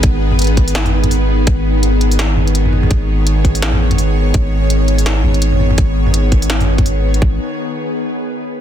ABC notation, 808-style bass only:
X:1
M:4/4
L:1/16
Q:"Swing 16ths" 1/4=167
K:G#m
V:1 name="808-style bass" clef=bass
G,,,16 | G,,,16 | G,,,8 =A,,,3 G,,,4- G,,, | G,,,8- G,,,2 G,,,6 |
G,,,16 | G,,,2 z12 z2 |]